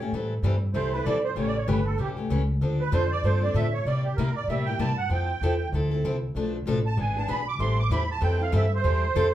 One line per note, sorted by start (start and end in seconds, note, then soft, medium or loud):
0.00 0.11 A#2 medium
0.00 0.13 A3 soft
0.00 0.13 C#4 medium
0.00 0.12 G4 medium
0.12 0.42 A2 medium
0.12 0.33 E3 medium
0.12 0.33 G3 medium
0.12 0.33 C4 medium
0.12 0.33 E4 medium
0.12 0.33 A4 medium
0.42 0.73 G2 medium
0.42 0.54 E3 medium
0.42 0.54 G3 medium
0.42 0.54 C4 medium
0.42 0.55 E4 medium
0.42 0.55 A4 medium
0.74 1.04 C2 medium
0.74 0.92 E3 medium
0.74 0.92 G3 medium
0.74 0.92 C4 medium
0.74 0.92 E4 medium
0.74 0.92 A4 medium
0.74 0.92 C5 medium
0.93 1.05 C4 soft
0.93 1.05 E4 soft
0.93 1.05 A4 soft
0.93 1.05 B4 medium
1.04 1.35 B1 medium
1.04 1.16 E3 medium
1.04 1.17 G3 medium
1.04 1.17 C4 medium
1.04 1.17 E4 medium
1.04 1.17 A4 medium
1.04 1.23 D5 medium
1.24 1.36 C5 medium
1.35 1.66 A1 medium
1.35 1.56 C#3 medium
1.35 1.56 E3 medium
1.35 1.56 A3 medium
1.35 1.57 C#4 medium
1.35 1.56 G4 medium
1.35 1.47 C#5 medium
1.47 1.57 D5 medium
1.58 1.68 C#5 medium
1.67 1.98 G1 medium
1.67 1.78 C#3 medium
1.67 1.79 E3 medium
1.67 1.79 A3 medium
1.67 1.79 C#4 medium
1.67 1.79 G4 medium
1.67 1.86 B4 medium
1.85 1.98 A4 medium
1.98 2.29 B1 medium
1.98 2.16 C#3 medium
1.98 2.17 E3 medium
1.98 2.17 A3 medium
1.98 2.17 C#4 medium
1.98 2.10 G4 medium
1.98 2.16 G4 medium
2.17 2.30 A3 soft
2.17 2.30 C#4 soft
2.17 2.29 G4 soft
2.30 2.60 C#2 medium
2.30 2.41 C#3 medium
2.30 2.41 E3 medium
2.30 2.41 A3 medium
2.30 2.41 C#4 medium
2.30 2.41 G4 medium
2.61 2.91 D2 medium
2.61 2.81 D3 medium
2.61 2.81 F3 medium
2.61 2.81 C4 medium
2.61 2.82 D4 medium
2.61 2.82 A4 medium
2.80 2.92 B4 medium
2.92 3.22 F2 medium
2.92 3.03 D3 medium
2.92 3.03 F3 medium
2.92 3.03 C4 medium
2.92 3.03 D4 medium
2.92 3.03 A4 medium
2.92 3.11 C5 medium
3.11 3.23 D5 loud
3.23 3.54 G2 medium
3.23 3.42 D3 medium
3.23 3.42 F3 medium
3.23 3.42 C4 medium
3.23 3.42 D4 medium
3.23 3.40 A4 medium
3.23 3.42 C5 medium
3.42 3.54 C4 soft
3.42 3.55 D4 soft
3.42 3.54 A4 medium
3.42 3.55 D5 medium
3.54 3.85 A2 medium
3.54 3.65 D3 medium
3.54 3.66 F3 medium
3.54 3.66 C4 medium
3.54 3.66 D4 medium
3.54 3.66 A4 medium
3.54 3.73 E5 medium
3.73 3.85 C#5 medium
3.85 4.16 C3 medium
3.85 4.06 C3 medium
3.85 4.06 G3 medium
3.85 4.06 A#3 medium
3.85 4.07 E4 medium
3.85 4.06 G4 medium
3.85 4.04 D5 medium
4.04 4.17 G4 medium
4.16 4.47 A#2 medium
4.16 4.28 C3 medium
4.16 4.28 G3 medium
4.16 4.29 A#3 medium
4.16 4.29 E4 medium
4.16 4.29 G4 loud
4.16 4.35 A#4 medium
4.36 4.48 D5 medium
4.48 4.78 A2 medium
4.48 4.67 C3 medium
4.48 4.67 G3 medium
4.48 4.67 A#3 medium
4.48 4.67 E4 medium
4.48 4.66 G4 medium
4.48 4.67 E5 medium
4.66 4.79 E4 soft
4.66 4.79 G4 medium
4.66 4.78 G5 medium
4.70 4.79 A#3 soft
4.79 5.09 G2 medium
4.79 4.90 C3 medium
4.79 4.90 G3 medium
4.79 4.90 A#3 medium
4.79 4.90 E4 medium
4.79 4.90 G4 medium
4.79 4.98 A5 medium
4.97 5.10 F#5 medium
5.09 5.40 F2 medium
5.09 5.30 F3 medium
5.09 5.30 C4 medium
5.09 5.30 E4 medium
5.09 5.31 A4 medium
5.09 5.69 G5 medium
5.41 5.72 E2 medium
5.41 5.53 F3 medium
5.41 5.53 C4 medium
5.41 5.53 E4 medium
5.41 5.53 A4 loud
5.72 6.03 D2 medium
5.72 5.91 F3 medium
5.72 5.92 C4 medium
5.72 5.92 E4 medium
5.72 5.90 A4 medium
5.91 6.04 C4 soft
5.91 6.04 E4 soft
5.91 6.03 A4 medium
6.04 6.34 C2 medium
6.04 6.15 F3 medium
6.04 6.15 C4 medium
6.04 6.16 E4 medium
6.04 6.16 A4 medium
6.35 6.65 B1 medium
6.35 6.55 B2 medium
6.35 6.56 F3 medium
6.35 6.56 A3 medium
6.35 6.56 D4 medium
6.35 6.56 A4 medium
6.66 6.96 A1 medium
6.66 6.77 B2 medium
6.66 6.78 F3 medium
6.66 6.78 A3 loud
6.66 6.78 D4 loud
6.66 6.78 A4 loud
6.86 6.98 A5 medium
6.97 7.28 G#1 medium
6.97 7.15 E3 medium
6.97 7.15 B3 medium
6.97 7.16 D4 medium
6.97 7.15 G#4 medium
6.97 7.17 G#5 medium
7.17 7.27 B3 soft
7.17 7.27 D4 soft
7.17 7.28 G#4 medium
7.17 7.29 A5 medium
7.28 7.58 B1 medium
7.28 7.39 E3 medium
7.28 7.39 B3 medium
7.28 7.39 D4 medium
7.28 7.40 G#4 loud
7.28 7.47 B5 medium
7.48 7.60 D6 loud
7.59 7.89 A1 medium
7.59 7.80 E3 medium
7.59 7.80 G3 medium
7.59 7.80 C4 medium
7.59 7.80 E4 medium
7.59 7.80 A4 medium
7.59 7.78 C6 medium
7.79 7.91 D6 loud
7.90 8.21 E2 medium
7.90 8.02 E3 medium
7.90 8.02 G3 medium
7.90 8.02 C4 loud
7.90 8.02 E4 medium
7.90 8.02 A4 loud
7.90 8.10 B5 medium
8.11 8.23 A5 loud
8.21 8.52 F2 medium
8.21 8.39 E3 medium
8.21 8.40 G3 medium
8.21 8.40 C4 medium
8.21 8.40 E4 medium
8.21 8.38 A4 medium
8.21 8.41 G5 medium
8.39 8.52 C4 soft
8.39 8.52 E4 soft
8.39 8.52 A4 soft
8.39 8.54 F5 medium
8.52 8.83 G2 medium
8.52 8.64 E3 medium
8.52 8.64 G3 medium
8.52 8.64 C4 medium
8.52 8.64 E4 medium
8.52 8.64 A4 medium
8.52 8.73 E5 medium
8.75 9.34 C5 medium
8.84 9.15 E2 medium
8.84 9.04 E3 medium
8.84 9.04 G3 medium
8.84 9.05 C4 medium
8.84 9.05 E4 medium
8.84 9.05 A4 medium
9.16 9.34 F2 medium
9.16 9.27 E3 medium
9.16 9.27 G3 medium
9.16 9.27 C4 loud
9.16 9.27 E4 medium
9.16 9.27 A4 loud